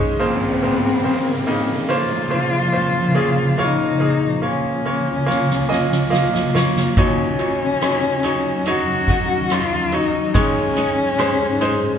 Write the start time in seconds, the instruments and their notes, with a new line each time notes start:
Already playing: ambient pad G#2 D#3 C#4 G#4, grand piano G#2 D#3 G#3 C#4 D#4 F4 C5 C#5
0.00 tambourine
0.20 grand piano A#2 C#3 F3 A#3 C5, ambient pad A#2 C#3 F3 C5, cello C4, downlifter
0.63 grand piano C#3 A#3 C5
1.04 grand piano C#3 A#3 C5
1.47 grand piano C#3 A#3 D#4
1.89 grand piano A#3 C#4 C5, cello F4
2.30 grand piano A#3 C#4 C5
2.72 grand piano A#3 C#4 C5
3.15 grand piano A#3 C#4 G#4
3.58 ambient pad C#2 C#3 A#3 F4, grand piano C#3 A#3 F4 C#5
3.63 cello D#4
4.00 grand piano A#3 F4 G#4
4.42 grand piano A#3 F4 C#5
4.47 cello C#4
4.85 grand piano A#3 F4 C#5
5.26 grand piano A#3 F4 C#5, snare
5.50 snare
5.69 grand piano A#3 F4 D#5 G#5, snare
5.92 snare
6.10 grand piano A#3 F4 D#5 F5, snare
6.34 grand piano D#5, snare
6.55 grand piano A#3 F4 C#5, snare
6.76 snare
6.97 ambient pad D#2 D#3 F#3 C#4, grand piano D#2 A#2 F#3 D#4 C#5, cello C#4, kick, closed hi-hat
7.39 grand piano F#3 D#4 C#5, closed hi-hat
7.81 grand piano F#3 D#4 C#5, cross-stick, closed hi-hat
8.23 grand piano F#3 D#4 C#5, closed hi-hat
8.66 grand piano F#3 D#4 C#5, cello F#4, closed hi-hat
9.08 grand piano F#3 D#4 F#4, kick, closed hi-hat
9.50 grand piano F#3 D#4 C#5, cello F4, cross-stick, closed hi-hat
9.92 grand piano F#3 D#4 C#5, cello D#4, closed hi-hat
10.33 ambient pad G#2 G#3 D#4, grand piano G#2 D#3 G#3 D#4 C#5, kick, closed hi-hat
10.38 cello C#4
10.76 grand piano G#3 D#4 C#5, closed hi-hat
11.18 grand piano G#3 D#4 C5, cross-stick, closed hi-hat
11.61 grand piano G#3 D#4 C5, closed hi-hat